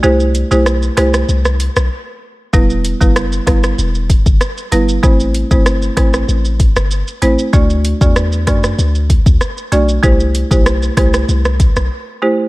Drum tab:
HH |--x---x---x-----|--x---x---x---x-|--x---x---x---x-|--x---x---x---x-|
SH |xxxxxxxxxxxx----|xxxxxxxxxxxxxxxx|xxxxxxxxxxxxxxxx|xxxxxxxxxxxxxxxx|
SD |----r-rr-r-r----|----r-rr----r---|----r-rr---r----|----r-rr----r---|
BD |----------------|o--o--o---oo----|o--o--o---o-----|o--o--o---oo----|

HH |--x---x---x-----|
SH |xxxxxxxxxxxx----|
SD |----r-rr-r-r----|
BD |o--o--o---o-----|